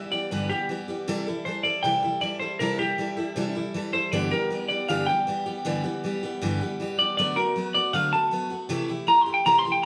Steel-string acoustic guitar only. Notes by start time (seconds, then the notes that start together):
Already playing: E3 G3 B3 G4
0.11 E3 G3 B3 G4
0.31 G2 D3 E3 G3 B3 G4
0.50 E3 G3 B3 G4
0.69 E3 G3 B3 G4
0.88 E3 G3 B3 G4
1.08 C3 E3 G3 E4 A4
1.27 G3 E4 A4
1.46 E3 G3 E4 A4
1.64 G3 E4 A4
1.84 C3 E3 G3 E4 A4
2.03 G3 E4 A4
2.21 E3 G3 E4 A4
2.41 G3 E4 A4
2.60 C3 E3 G3 E4 A4
2.79 G3 E4 A4
2.98 E3 G3 E4 A4
3.17 G3 E4 A4
3.36 C3 E3 G3 E4 A4
3.55 G3 E4 A4
3.74 E3 G3 E4 A4
3.93 G3 E4 A4
4.12 G2 D3 E3 G3 B3 G4
4.31 E3 G3 B3 G4
4.50 E3 G3 B3 G4
4.70 E3 G3 B3 G4
4.88 G2 D3 E3 G3 B3 G4
5.08 E3 G3 B3 G4
5.27 E3 G3 B3 G4
5.46 E3 G3 B3 G4
5.65 G2 D3 E3 G3 B3 G4
5.84 E3 G3 B3 G4
6.04 E3 G3 B3 G4
6.23 E3 G3 B3 G4
6.42 G2 D3 E3 G3 B3 G4
6.61 E3 G3 B3 G4
6.80 E3 G3 B3 G4
6.99 E3 G3 B3 G4
7.19 D3 F#3 A3 B3 F#4
7.37 A3 B3 F#4
7.56 F#3 A3 B3 F#4
7.75 A3 B3 F#4
7.93 D3 F#3 A3 B3 F#4
8.13 A3 B3 F#4
8.31 F#3 A3 B3 F#4
8.50 A3 B3 F#4
8.69 C3 E3 A3 E4 G4
8.88 A3 E4 G4
9.07 E3 A3 E4 G4
9.26 A3 E4 G4
9.46 C3 E3 A3 E4 G4
9.65 A3 E4 G4